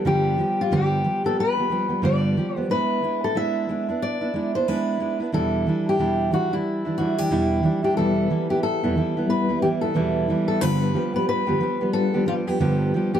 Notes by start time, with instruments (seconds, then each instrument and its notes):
0.05 steel-string acoustic guitar G2 D3 F3 G3 B3 G4
0.38 steel-string acoustic guitar F3 G3 B3 G4
0.61 steel-string acoustic guitar F4
0.71 steel-string acoustic guitar G2 D3 F3 G3 B3 G4
1.04 steel-string acoustic guitar F3 G3 B3 G4
1.24 steel-string acoustic guitar F3 G3 B3 G4 A4
1.40 steel-string acoustic guitar B4
1.57 steel-string acoustic guitar F3 G3 B3 G4
1.69 steel-string acoustic guitar F3 G3 B3 G4
1.89 steel-string acoustic guitar F3 G3 B3 G4
2.02 steel-string acoustic guitar G2 D3 F3 G3 B3 G4 D5
2.37 steel-string acoustic guitar F3 G3 B3 G4
2.56 steel-string acoustic guitar F3 G3 B3 G4 C5
2.70 steel-string acoustic guitar G#3 B3 D4 E4 B4
3.02 steel-string acoustic guitar G#3 B3 D4 E4
3.24 steel-string acoustic guitar A4
3.35 steel-string acoustic guitar G#3 B3 D4 E4 E5
3.69 steel-string acoustic guitar G#3 B3 D4 E4
3.88 steel-string acoustic guitar B3 D4 E4
4.02 steel-string acoustic guitar D5
4.21 steel-string acoustic guitar B3 D4 E4
4.34 steel-string acoustic guitar G#3 B3 D4 E4
4.55 steel-string acoustic guitar B3 D4 E4 C5
4.68 steel-string acoustic guitar G#3 B3 D4 E4 B4
5.00 steel-string acoustic guitar G#3 B3 D4 E4
5.20 steel-string acoustic guitar B3 D4 E4
5.32 steel-string acoustic guitar E2 B2 E3 G3 D4 E4 A4
5.66 steel-string acoustic guitar E3 G3 D4 E4
5.89 steel-string acoustic guitar G4
5.99 steel-string acoustic guitar E2 B2 E3 G3 D4 E4
6.31 steel-string acoustic guitar E3 G3 D4 E4 F#4
6.51 steel-string acoustic guitar E3 G3 D4 E4
6.85 steel-string acoustic guitar E3 G3 D4 E4
6.98 steel-string acoustic guitar E3 G3 D4 E4 F#4
7.18 steel-string acoustic guitar E3 G3 D4 E4 G4
7.31 steel-string acoustic guitar E2 B2 E3 G3 D4 E4
7.63 steel-string acoustic guitar E3 G3 D4 E4
7.83 steel-string acoustic guitar E3 G3 D4 E4 G4
7.96 steel-string acoustic guitar E2 B2 E3 G3 B3 E4 A4, reed electric piano G3 B3 E4 B4
8.30 steel-string acoustic guitar E3 G3 B3 E4
8.49 steel-string acoustic guitar E3 G3 B3 E4 G4
8.63 steel-string acoustic guitar A4
8.83 steel-string acoustic guitar E2 B2 E3 G3 B3 E4
8.96 steel-string acoustic guitar E3 G3 B3 E4
9.17 steel-string acoustic guitar E3 G3 B3 E4
9.27 reed electric piano G3 B3 E4 B4, steel-string acoustic guitar B4
9.49 steel-string acoustic guitar E3 G3 B3 E4
9.62 steel-string acoustic guitar E3 G3 B3 E4 G4
9.81 steel-string acoustic guitar E3 G3 B3 E4 A4
9.94 steel-string acoustic guitar E2 B2 E3 G3 B3 E4
10.28 steel-string acoustic guitar E3 G3 B3 E4
10.48 steel-string acoustic guitar A4
10.61 steel-string acoustic guitar G2 D3 F3 G3 B3 G4 B4, reed electric piano G3 D4 F4 B4
10.94 steel-string acoustic guitar F3 G3 B3 G4
11.14 steel-string acoustic guitar F3 G3 B3 G4 B4
11.29 steel-string acoustic guitar B4
11.47 steel-string acoustic guitar G2 D3 F3 G3 B3 G4
11.60 steel-string acoustic guitar F3 G3 B3 G4
11.81 steel-string acoustic guitar F3 G3 B3 G4
11.92 reed electric piano G3 D4 F4 B4, steel-string acoustic guitar A4
12.14 steel-string acoustic guitar F3 G3 B3 G4
12.26 steel-string acoustic guitar F3 G3 B3 F4 G4
12.47 steel-string acoustic guitar F3 G3 B3 G4
12.59 steel-string acoustic guitar G2 D3 F3 G3 B3 G4
12.94 steel-string acoustic guitar F3 G3 B3 G4
13.13 steel-string acoustic guitar F3 G3 B3 G4